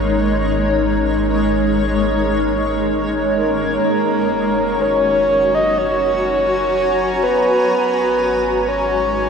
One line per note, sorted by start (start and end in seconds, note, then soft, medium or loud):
0.00 3.78 G#1 medium
0.00 3.83 G#3 medium
0.00 5.38 D#4 medium
0.00 5.38 A#4 medium
0.00 9.26 C#5 medium
3.36 4.83 A#4 medium
3.82 7.65 F#1 medium
3.82 9.17 F#4 medium
4.81 5.56 C#5 loud
5.54 5.79 D#5 loud
5.54 9.25 G#5 medium
5.54 9.25 A#5 medium
5.78 7.25 C#5 loud
7.23 8.68 B4 loud
7.70 9.29 G#1 medium
7.70 9.29 G#3 medium
8.51 9.29 D#4 medium
8.68 9.29 C#5 medium